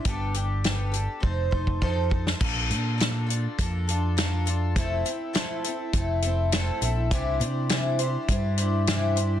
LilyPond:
<<
  \new Staff \with { instrumentName = "Twelve-string acoustic guitar" } { \time 4/4 \key f \lydian \tempo 4 = 102 <g b d' g' a'>8 <d' g' a'>8 <g b d' g' a'>8 <d' g' a'>8 <c' ees' a' c''>8 <ees' a' c''>8 <f c' ees' a' c''>8 <ees' a' c''>8 | \key bes \lydian <bes d' f' a'>8 <d' f' a'>8 <bes d' f' a'>8 <d' f' a'>8 <bes d' f' a'>8 <d' f' a'>8 <bes d' f' a'>8 <d' f' a'>8 | <f a c' e' a'>8 <c' e' a'>8 <f a c' e' a'>8 <c' e' a'>8 <a c' e' a'>8 <c' e' a'>8 <f a c' e' a'>8 <c' e' a'>8 | <c e g d' e' c''>8 <g d' e' c''>8 <c e g d' e' c''>8 <g d' e' c''>8 <g d' e' c''>8 <g d' e' c''>8 <c e g d' e' c''>8 <g d' e' c''>8 | }
  \new Staff \with { instrumentName = "Picked electric bass" } { \clef bass \time 4/4 \key f \lydian g,,2 f,,8 f,,8 f,4 | \key bes \lydian bes,,8 bes,4. f,2 | f,,8 r4. f,,4. bes,,8 | c,8 c4. g,2 | }
  \new DrumStaff \with { instrumentName = "Drums" } \drummode { \time 4/4 <hh bd>8 hh8 <hh sn>8 hh8 bd8 bd16 bd16 bd8 bd16 sn16 | <cymc bd>8 hh8 <hh sn>8 hh8 <hh bd>8 hh8 <hh sn>8 hh8 | <hh bd>8 hh8 <hh sn>8 hh8 <hh bd>8 hh8 <hh sn>8 hh8 | <hh bd>8 hh8 <hh sn>8 hh8 <hh bd>8 hh8 <hh sn>8 hh8 | }
>>